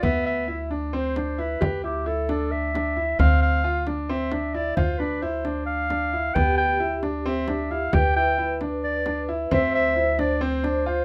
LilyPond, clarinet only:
\new Staff \with { instrumentName = "Clarinet" } { \time 7/8 \key d \dorian \tempo 4 = 133 e''8 e''4 r8 c''4 b'8~ | b'8 g'8 a'4 e''4. | f''8 f''4 r8 e''4 d''8 | c''8 b'8 c''4 f''4. |
g''8 g''4 r8 e''4 f''8 | g''8 g''4 r8 d''4 r8 | e''8 e''4 d''8 c''4 c''8 | }